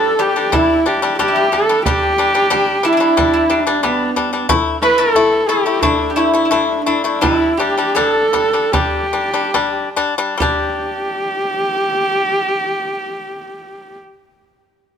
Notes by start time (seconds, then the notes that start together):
Already playing: G3 D4 E4 G4 A4 B4
0.19 G3 D4 G4
0.36 G3 D4
0.52 G3 D4 E4, frame drum
0.86 G3 D4 G4, frame drum
1.02 G3 D4
1.19 G3 D4 G4, frame drum
1.28 E4
1.36 G4
1.52 G3 D4 A4, frame drum
1.69 G3 D4
1.86 G3 D4 G4, frame drum
2.18 G3 D4, frame drum
2.34 G3 D4
2.50 G3 D4, frame drum
2.83 G3 D4 E4
2.92 D4
2.97 G3 D4 E4
3.17 G3 D4, frame drum
3.33 E4
3.50 G3 D4, frame drum
3.67 G3 D4
3.83 G3 B3 D4, frame drum
4.16 G3 D4, frame drum
4.33 G3 D4
4.49 A3 E4, frame drum
4.82 A3 E4 B4, frame drum
4.98 A3 E4 A4
5.15 A3 E4, frame drum
5.48 A3 E4 G4
5.66 A3 E4
5.82 A3 D4 E4, frame drum
6.10 G4
6.16 A3 E4
6.34 A3 E4
6.45 E4
6.50 A3 D4 E4, frame drum
6.86 A3 D4 E4, frame drum
7.04 A3 E4
7.21 G3 D4 E4, frame drum
7.57 G3 D4 G4, frame drum
7.78 G3 D4
7.95 G3 D4 G#4 A4, frame drum
8.12 A4
8.33 G3 D4, frame drum
8.53 G3 D4
8.72 G3 D4 G4, frame drum
9.13 G3 D4, frame drum
9.34 G3 D4
9.54 G3 D4, frame drum
9.96 G3 D4, frame drum
10.18 G3 D4
10.38 G3 G4, frame drum
10.42 D4